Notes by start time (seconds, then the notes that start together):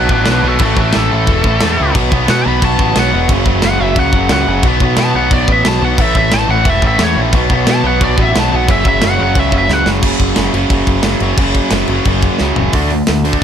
Already playing: B2 B4
0.09 A1 B2 F#3 B3 D4 B4, kick
0.26 B1 B2 F#3 B3, snare, crash
0.31 D4 B4
0.43 B1 B2 F#3 B3
0.48 F#4 A4
0.59 A1 A2 E3 A3, kick, crash
0.64 F#4 A4
0.77 A1 A2 E3 A3 F#4, kick
0.81 A4
0.93 A1 A2 E3 A3, snare, crash
0.98 A4
1.12 A1 A2 E3 A3
1.27 E1 A2 E3 A3, kick, crash
1.44 A1 A2 E3 A3, kick
1.61 E2 A2 E3 A3, snare, crash
1.77 C#2 A2 E3 A3
1.93 B1 B2 F#3 B3, kick, crash
1.98 B3
2.10 B1 B2 F#3 B3, kick
2.26 B2 F#3 B3, snare, crash
2.30 F#5
2.44 B1 B2 F#3 B3 B5
2.61 B1 B2 F#3 B3 A5, kick, crash
2.78 A1 B2 F#3 B3, kick
2.95 B1 B2 F#3 B3, snare, crash
2.99 F#5
3.12 E1 B2 F#3 B3
3.28 F#1 F#2 C#3 F#3, kick, crash
3.44 F#1 F#2 C#3 F#3, kick
3.62 F#1 F#2 C#3 F#3 F#5, snare, crash
3.80 F#1 F#2 C#3 F#3 E5
3.96 C#2 F#2 C#3 F#3 F#5, kick, crash
4.13 F#1 F#2 C#3 F#3, kick
4.29 C#2 F#2 C#3 F#5, snare, crash
4.34 F#3
4.47 F#1 F#2 C#3 F#3
4.63 B1 B2 F#3 B3, kick, crash
4.80 B1 B2 F#3 B3, kick
4.97 B2 F#3 B3 A5, snare, crash
5.15 B1 B2 F#3 B3 F#5
5.31 B1 B2 F#3 B3 D5, kick, crash
5.48 A1 B2 F#3 B3, kick
5.52 E5
5.64 B1 B2 F#3 B3 A5, snare, crash
5.81 B1 B2 F#3 B3 F#5
5.98 A1 A2 E3 A3 E5, kick, crash
6.15 A1 A2 E3 A3 E5, kick
6.32 A1 A2 E3 A3 A5, snare, crash
6.48 A1 A2 E3 A3 F#5
6.65 E1 A2 E3 A3, kick, crash
6.70 E5
6.82 A1 A2 E3 A3, kick
6.88 E5
6.98 E2 A2 E3 A3, snare, crash
7.04 C#5
7.16 A#1 A2 E3 A3
7.32 B1 B2 F#3 B3, kick, crash
7.49 B1 B2 F#3 B3, kick
7.65 B2 F#3 B3, snare, crash
7.71 A5
7.83 B1 B2 F#3 B3
7.88 F#5
7.99 B1 B2 F#3 B3, kick, crash
8.04 D5
8.16 A1 B2 F#3 B3, kick
8.22 E5
8.33 B1 B2 F#3 B3, snare, crash
8.39 A5
8.50 B1 B2 F#3 B3
8.56 F#5
8.67 F#1 F#2 C#3 F#3, kick, crash
8.71 E5
8.84 F#1 F#2 C#3 F#3, kick
8.88 E5
9.01 F#1 F#2 C#3 F#3, snare, crash
9.06 F#5
9.18 F#1 F#2 C#3 F#3
9.23 F#5
9.34 C#2 F#2 C#3 F#3, kick, crash
9.39 E5
9.52 F#1 F#2 C#3 F#3, kick
9.58 E5
9.69 C#2 F#2 C#3 F#3, snare
9.73 F#5
9.85 F#1 F#2 C#3 F#3, snare
10.01 F#1 F#2 C#3 F#3, kick, crash
10.20 F#1, kick, crash
10.35 F#1 F#2 C#3 F#3, snare, crash
10.52 F#1 F#2 C#3 F#3, crash
10.69 F#1 F#2 C#3 F#3, kick, crash
10.87 F#1, kick, crash
11.02 F#1 F#2 C#3 F#3, snare, crash
11.20 F#1 F#2 C#3 F#3, crash
11.37 F#1 F#2 C#3 F#3, kick, crash
11.55 kick, crash
11.71 F#1 F#2 C#3 F#3, snare, crash
11.88 F#1 F#3, crash
11.92 F#2 C#3
12.05 F#1 F#2 C#3 F#3, kick, crash
12.23 kick, crash
12.38 C#2 F#2 C#3 F#3, snare
12.56 F#1 F#2 C#3 F#3, floor tom
12.73 D2 D3 A3 D4, kick, open hi-hat
12.90 D3 A3, open hi-hat
13.07 D2 D3 A3, snare, open hi-hat
13.24 D3 A3 D4, open hi-hat
13.33 kick
13.40 D3